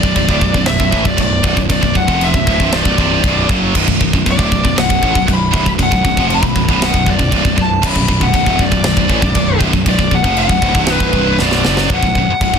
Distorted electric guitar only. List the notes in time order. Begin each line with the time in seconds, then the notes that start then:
0.04 B1 F#2
0.16 B1 F#2
0.29 D2 A2
0.43 B1 F#2
0.55 B1 F#2
0.67 B1 F#2
0.81 B1 F#2
0.92 A2 E3
1.05 B1 F#2
1.17 B1 F#2
1.43 B1 F#2
1.56 B1 F#2
1.69 B1 F#2
1.81 B1 F#2
1.95 B1 F#2
2.08 F2 C3 F3
2.35 B1 F#2
2.48 D2 A2
2.61 C2 G2 C3
2.86 B1 F#2
2.99 C2 G2 C3
3.24 B1 F#2 B2
3.49 F#2 C#3 F#3
3.76 B1 F#2
3.88 B1 F#2
4.00 B1 F#2
4.15 B1 F#2
4.27 B1 F#2
4.39 D2 A2
4.52 B1 F#2
4.64 B1 F#2
4.76 B1 F#2
4.90 B1 F#2
5.03 A2 E3
5.15 B1 F#2
5.27 B1 F#2
5.52 B1 F#2
5.66 B1 F#2
5.78 B1 F#2
5.91 B1 F#2
6.04 B1 F#2
6.18 F2 C3 F3
6.44 B1 F#2
6.56 B1 F#2
6.69 B1 F#2 B2
6.95 B1 F#2
7.07 B1 F#2
7.18 B1 F#2
7.31 C2 G2
7.44 B1 F#2
7.56 B1 F#2
7.82 B1 F#2
7.96 B1 F#2
8.09 B1 F#2
8.21 B1 F#2
8.35 B1 F#2
8.47 D2 A2
8.60 B1 F#2
8.71 B1 F#2
8.85 B1 F#2
8.97 B1 F#2
9.08 A2 E3
9.21 B1 F#2
9.36 B1 F#2
9.59 B1 F#2
9.74 B1 F#2
9.87 B1 F#2
9.98 B1 F#2
10.12 B1 F#2
10.25 F2 C3 F3
10.51 B1 F#2
10.63 D2 A2
10.77 C2 G2 C3
11.02 B1 F#2
11.16 C2 G2 C3
11.41 B1 F#2 B2
11.67 F#2 C#3 F#3
11.93 B1 F#2
12.04 B1 F#2
12.18 B1 F#2
12.31 muted distorted electric guitar stroke
12.42 B1 F#2